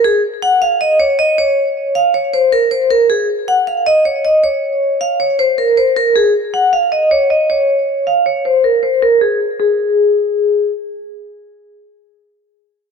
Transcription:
0.04 G#4
0.42 F#5
0.62 F5
0.81 D#5
1.00 C#5
1.19 D#5
1.38 C#5
1.95 F5
2.14 C#5
2.34 C5
2.52 A#4
2.71 C5
2.91 A#4
3.10 G#4
3.48 F#5
3.67 F5
3.86 D#5
4.05 C#5
4.25 D#5
4.44 C#5
5.01 F5
5.20 C#5
5.39 C5
5.58 A#4
5.77 C5
5.96 A#4
6.16 G#4
6.54 F#5
6.73 F5
6.92 D#5
7.11 C#5
7.30 D#5
7.50 C#5
8.07 F5
8.26 C#5
8.45 C5
8.64 A#4
8.83 C5
9.02 A#4
9.21 G#4
9.60 G#4

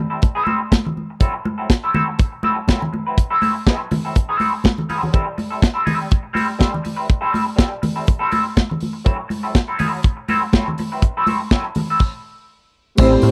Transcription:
0.10 G3 C4 E4 A4
0.22 muted clean electric guitar stroke, kick, closed hi-hat, muted conga
0.35 G3 C4 E4 A4
0.46 G3 C4 E4 A4, muted conga, high conga
0.60 muted clean electric guitar stroke
0.71 muted clean electric guitar stroke, kick, snare, closed hi-hat, high conga
0.85 muted clean electric guitar stroke, low conga
0.97 high conga
1.10 muted clean electric guitar stroke
1.20 F#3 C4 E4 A4, kick, closed hi-hat
1.34 muted clean electric guitar stroke
1.45 muted clean electric guitar stroke, muted conga, high conga
1.58 F#3 C4 E4 A4
1.70 muted clean electric guitar stroke, kick, snare, closed hi-hat
1.84 F#3 C4 E4 A4
1.94 F#3 C4 E4 A4, muted conga, high conga, low conga
2.09 muted clean electric guitar stroke
2.19 kick, closed hi-hat, muted conga
2.32 muted clean electric guitar stroke
2.43 F#3 C4 E4 A4, muted conga, high conga
2.58 muted clean electric guitar stroke
2.68 F#3 C4 E4 A4, kick, snare, closed hi-hat, muted conga, high conga
2.81 muted clean electric guitar stroke, low conga
2.93 muted clean electric guitar stroke, muted conga, high conga
3.07 F#3 C4 E4 B4
3.18 muted clean electric guitar stroke, kick, closed hi-hat, muted conga
3.30 F#3 C4 E4 A4
3.41 F#3 C4 E4 A4, open hi-hat, muted conga, high conga
3.55 muted clean electric guitar stroke
3.66 F#3 C4 E4 A4, kick, snare, closed hi-hat, muted conga
3.80 muted clean electric guitar stroke
3.91 muted clean electric guitar stroke, open hi-hat, muted conga, high conga, low conga
4.05 F#3 C4 E4 A4
4.15 muted clean electric guitar stroke, kick, closed hi-hat, muted conga
4.29 F#3 C4 E4 A4
4.39 F#3 C4 E4 A4, open hi-hat, muted conga, high conga
4.54 muted clean electric guitar stroke
4.64 muted clean electric guitar stroke, kick, snare, closed hi-hat, muted conga, high conga
4.78 muted clean electric guitar stroke, low conga
4.89 F#3 C4 E4 A4, open hi-hat, muted conga, high conga
5.03 muted clean electric guitar stroke, low conga
5.13 G3 C4 E4 A4, kick, closed hi-hat, muted conga
5.26 muted clean electric guitar stroke
5.37 muted clean electric guitar stroke, open hi-hat, high conga
5.50 G3 C4 E4 A4
5.61 muted clean electric guitar stroke, kick, snare, closed hi-hat
5.74 G3 C4 E4 A4
5.85 G3 C4 E4 A4, open hi-hat, high conga, low conga
6.00 muted clean electric guitar stroke
6.11 kick, closed hi-hat
6.23 muted clean electric guitar stroke
6.33 G3 C4 E4 A4, open hi-hat, high conga
6.47 muted clean electric guitar stroke
6.59 G3 C4 E4 A4, kick, snare, closed hi-hat, high conga
6.72 muted clean electric guitar stroke, low conga
6.83 muted clean electric guitar stroke, open hi-hat, muted conga, high conga
6.96 G3 C4 E4 B4
7.07 muted clean electric guitar stroke, kick, closed hi-hat
7.21 G3 C4 E4 A4
7.31 G3 C4 E4 A4, open hi-hat, high conga
7.46 muted clean electric guitar stroke
7.56 G3 C4 E4 A4, kick, snare, closed hi-hat, muted conga
7.70 muted clean electric guitar stroke
7.82 muted clean electric guitar stroke, open hi-hat, muted conga, high conga, low conga
7.96 G3 C4 E4 A4
8.07 muted clean electric guitar stroke, kick, closed hi-hat, muted conga
8.19 G3 C4 E4 A4
8.31 G3 C4 E4 A4, open hi-hat, muted conga, high conga
8.45 muted clean electric guitar stroke
8.55 muted clean electric guitar stroke, kick, snare, closed hi-hat, muted conga, high conga
8.70 muted clean electric guitar stroke, low conga
8.80 open hi-hat, muted conga, high conga
8.93 muted clean electric guitar stroke
9.05 F#3 C4 E4 A4, kick, closed hi-hat
9.18 muted clean electric guitar stroke
9.28 muted clean electric guitar stroke, open hi-hat, high conga
9.43 F#3 C4 E4 A4
9.54 muted clean electric guitar stroke, kick, snare, closed hi-hat
9.68 F#3 C4 E4 A4
9.78 F#3 C4 E4 A4, open hi-hat, high conga, low conga
9.92 muted clean electric guitar stroke
10.03 kick, closed hi-hat
10.17 muted clean electric guitar stroke
10.28 F#3 C4 E4 A4, open hi-hat, muted conga, high conga
10.43 muted clean electric guitar stroke
10.53 F#3 C4 E4 A4, kick, snare, closed hi-hat, muted conga, high conga
10.68 muted clean electric guitar stroke, low conga
10.78 muted clean electric guitar stroke, open hi-hat, muted conga, high conga
10.92 F#3 C4 E4 B4
11.02 muted clean electric guitar stroke, kick, closed hi-hat, muted conga
11.17 F#3 C4 E4 A4
11.27 F#3 C4 E4 A4, open hi-hat, muted conga, high conga
11.41 muted clean electric guitar stroke
11.51 F#3 C4 E4 A4, kick, snare, closed hi-hat, muted conga
11.66 muted clean electric guitar stroke
11.75 muted clean electric guitar stroke, open hi-hat, muted conga, high conga, low conga
11.90 F#3 C4 E4 A4
11.99 kick, crash
12.97 A1 G3 A3 C4 E4 G4 A4 C5, kick, crash, tambourine, muted conga
13.12 muted clean electric guitar stroke
13.22 A2, muted clean electric guitar stroke, open hi-hat, tambourine, muted conga, high conga

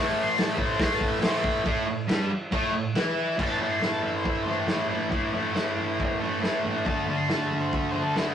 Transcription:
Already playing: A2 E3 A3
0.23 C6
0.38 A5, snare, open hi-hat
0.51 E5
0.55 A2 E3 A3, kick
0.66 C5
0.79 C6, kick, snare, open hi-hat
0.94 A5
1.01 kick
1.08 E5
1.20 A2 E3 A3 C5, snare, open hi-hat
1.37 E5
1.44 kick
1.65 A2 A3, kick, crash
1.87 A2
2.07 G2 G3, snare, crash
2.30 muted distorted electric guitar stroke
2.52 A2 A3, kick, crash
2.72 A2
2.95 E3 E4, snare, crash
3.37 A2 E3 A3, kick, floor tom, crash
3.43 A5
3.58 E3 A3, floor tom
3.71 C6
3.80 A2 E3 A3, snare, floor tom
3.87 A5
4.03 E5, floor tom
4.16 C5
4.24 kick, floor tom
4.30 E5
4.43 A3 C5, floor tom
4.49 E3
4.60 G4
4.66 A2 E3 A3, snare, floor tom
4.72 E4
4.88 E3 A3 E4, floor tom
5.10 A2 E3 A3, kick, floor tom
5.32 E3 A3, floor tom
5.52 A2 E3 A3, snare, floor tom
5.77 floor tom
6.00 kick, floor tom
6.19 E3 A3, floor tom
6.41 A2 E3 A3, snare, floor tom
6.62 E3 A3, floor tom
6.85 D3 A3 D4 A5, kick, floor tom
7.07 A3 D4, floor tom
7.17 C6
7.28 D3 A3 D4, snare, floor tom
7.34 A5
7.47 E5
7.51 floor tom
7.60 C5
7.73 E5, kick, floor tom
7.90 D4 C5
7.95 A3, floor tom
8.02 A4
8.15 D3 A3 D4 E4, snare, floor tom

